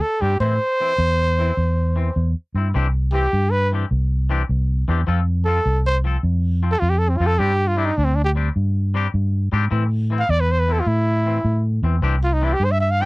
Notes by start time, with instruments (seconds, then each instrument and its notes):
0.01 trumpet A4
0.21 fingered electric bass G2, clean electric guitar G3 C4 D4, trumpet G4, muted clean electric guitar stroke
0.40 fingered electric bass A2, clean electric guitar E3 C4 E4, trumpet C5
0.81 clean electric guitar E3 C4 E4
0.98 fingered electric bass E2
1.39 clean electric guitar E3 C4 E4
1.57 fingered electric bass E2
1.96 clean electric guitar E3 C4
2.16 fingered electric bass E2
2.54 fingered electric bass G2, clean electric guitar C4 E4
2.74 fingered electric bass C2, clean electric guitar E3 C4 D4 G4
3.12 clean electric guitar E3 C4 G4, trumpet G4, muted clean electric guitar stroke
3.33 fingered electric bass G2
3.51 trumpet B4
3.72 clean electric guitar E3 C4 D4 G4
3.91 fingered electric bass C2
4.30 clean electric guitar E3 C4 D4 G4
4.49 fingered electric bass C2
4.88 fingered electric bass E2, clean electric guitar E3 C4 D4 G4
5.07 fingered electric bass F2, clean electric guitar F3 C4 F4 A4
5.45 clean electric guitar F3 C4 F4, trumpet A4
5.49 clean electric guitar A4
5.66 fingered electric bass C2
5.86 trumpet C5
6.04 clean electric guitar F3 C4 A4
6.23 fingered electric bass F2
6.63 clean electric guitar F3 C4, muted clean electric guitar stroke
6.72 trumpet A4
6.80 fingered electric bass F2, trumpet F4
6.90 trumpet G4
6.99 trumpet A4
7.09 trumpet C4
7.17 fingered electric bass F2, clean electric guitar F3 C4, trumpet F4
7.22 clean electric guitar F4 A4
7.27 trumpet A4
7.39 fingered electric bass G2, clean electric guitar G3 C4 D4 G4, trumpet G4
7.68 trumpet F4
7.76 clean electric guitar G3 C4 D4 G4, trumpet E4
7.85 trumpet D#4
7.97 fingered electric bass D2, trumpet D4
8.05 trumpet C4
8.15 trumpet D4
8.24 trumpet G4
8.35 clean electric guitar G3 C4 D4 G4
8.56 fingered electric bass G2
8.94 clean electric guitar G3 C4 D4 G4
9.14 fingered electric bass G2
9.52 fingered electric bass G#2, clean electric guitar G3 C4 D4 G4
9.71 fingered electric bass A2, clean electric guitar E3 C4 E4
10.10 clean electric guitar E3 C4 E4
10.19 trumpet F5
10.29 fingered electric bass E2, trumpet D5
10.40 trumpet B4
10.51 trumpet C5
10.60 trumpet B4
10.68 clean electric guitar E3 C4 E4
10.72 trumpet A4
10.80 trumpet F4
10.86 fingered electric bass A2, trumpet E4
11.26 clean electric guitar E3 C4
11.45 fingered electric bass A2
11.83 fingered electric bass E2, clean electric guitar E3 C4
12.02 fingered electric bass C2, clean electric guitar E3 C4 D4 G4
12.24 trumpet F4
12.33 trumpet D#4
12.41 clean electric guitar E3 C4 D4 G4, trumpet E4
12.53 trumpet G4
12.60 fingered electric bass G2
12.65 trumpet C5
12.71 trumpet E5
12.80 trumpet E5
12.91 trumpet F5
13.00 clean electric guitar E3 C4 D4 G4, trumpet G5